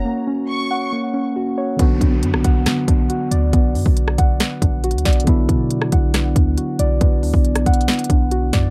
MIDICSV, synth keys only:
0, 0, Header, 1, 2, 480
1, 0, Start_track
1, 0, Key_signature, 2, "minor"
1, 0, Tempo, 434783
1, 60, Time_signature, 4, 2, 24, 8
1, 9607, End_track
2, 0, Start_track
2, 0, Title_t, "Synth keys"
2, 0, Program_c, 0, 88
2, 0, Note_on_c, 0, 61, 81
2, 0, Note_on_c, 0, 66, 91
2, 0, Note_on_c, 0, 73, 83
2, 0, Note_on_c, 0, 78, 88
2, 59, Note_on_c, 0, 58, 90
2, 288, Note_off_c, 0, 61, 0
2, 299, Note_off_c, 0, 78, 0
2, 301, Note_on_c, 0, 61, 82
2, 781, Note_on_c, 0, 78, 85
2, 1007, Note_off_c, 0, 58, 0
2, 1019, Note_off_c, 0, 66, 0
2, 1020, Note_on_c, 0, 58, 88
2, 1243, Note_off_c, 0, 61, 0
2, 1256, Note_on_c, 0, 61, 83
2, 1259, Note_off_c, 0, 73, 0
2, 1503, Note_on_c, 0, 66, 88
2, 1740, Note_on_c, 0, 73, 86
2, 1978, Note_off_c, 0, 61, 0
2, 1980, Note_off_c, 0, 58, 0
2, 1980, Note_off_c, 0, 73, 0
2, 1980, Note_off_c, 0, 78, 0
2, 1981, Note_off_c, 0, 66, 0
2, 1981, Note_on_c, 0, 59, 101
2, 2217, Note_on_c, 0, 62, 78
2, 2700, Note_on_c, 0, 78, 88
2, 2926, Note_off_c, 0, 59, 0
2, 2939, Note_on_c, 0, 59, 92
2, 3166, Note_off_c, 0, 62, 0
2, 3179, Note_on_c, 0, 62, 88
2, 3421, Note_on_c, 0, 66, 94
2, 3656, Note_on_c, 0, 74, 88
2, 3885, Note_off_c, 0, 59, 0
2, 3898, Note_on_c, 0, 59, 97
2, 4124, Note_off_c, 0, 62, 0
2, 4138, Note_on_c, 0, 62, 81
2, 4140, Note_off_c, 0, 78, 0
2, 4616, Note_on_c, 0, 78, 90
2, 4849, Note_off_c, 0, 59, 0
2, 4860, Note_off_c, 0, 66, 0
2, 4863, Note_on_c, 0, 59, 97
2, 5087, Note_off_c, 0, 62, 0
2, 5098, Note_off_c, 0, 74, 0
2, 5100, Note_on_c, 0, 62, 88
2, 5343, Note_on_c, 0, 66, 93
2, 5580, Note_on_c, 0, 74, 83
2, 5808, Note_off_c, 0, 59, 0
2, 5821, Note_on_c, 0, 59, 95
2, 6044, Note_off_c, 0, 62, 0
2, 6057, Note_on_c, 0, 62, 83
2, 6058, Note_off_c, 0, 78, 0
2, 6540, Note_on_c, 0, 78, 84
2, 6767, Note_off_c, 0, 59, 0
2, 6780, Note_on_c, 0, 59, 92
2, 6781, Note_off_c, 0, 66, 0
2, 7007, Note_off_c, 0, 62, 0
2, 7020, Note_off_c, 0, 74, 0
2, 7020, Note_on_c, 0, 62, 72
2, 7259, Note_on_c, 0, 66, 88
2, 7501, Note_on_c, 0, 74, 91
2, 7727, Note_off_c, 0, 59, 0
2, 7740, Note_on_c, 0, 59, 102
2, 7966, Note_off_c, 0, 62, 0
2, 7979, Note_on_c, 0, 62, 79
2, 7980, Note_off_c, 0, 78, 0
2, 8461, Note_on_c, 0, 78, 96
2, 8687, Note_off_c, 0, 59, 0
2, 8699, Note_off_c, 0, 66, 0
2, 8701, Note_on_c, 0, 59, 97
2, 8927, Note_off_c, 0, 62, 0
2, 8940, Note_on_c, 0, 62, 84
2, 8941, Note_off_c, 0, 74, 0
2, 9181, Note_on_c, 0, 66, 90
2, 9421, Note_on_c, 0, 74, 93
2, 9607, Note_off_c, 0, 59, 0
2, 9607, Note_off_c, 0, 62, 0
2, 9607, Note_off_c, 0, 66, 0
2, 9607, Note_off_c, 0, 74, 0
2, 9607, Note_off_c, 0, 78, 0
2, 9607, End_track
0, 0, End_of_file